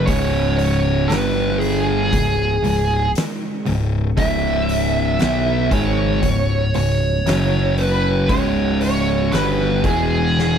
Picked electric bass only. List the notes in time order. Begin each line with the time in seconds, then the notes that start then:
0.08 C#1
1.11 G1
2.14 C#1
2.66 C#1
3.69 C#1
4.18 C#1
5.23 B1
5.72 G#1
6.24 C#1
6.76 C#1
7.27 F#1
8.30 C#1
9.32 G1
9.84 E1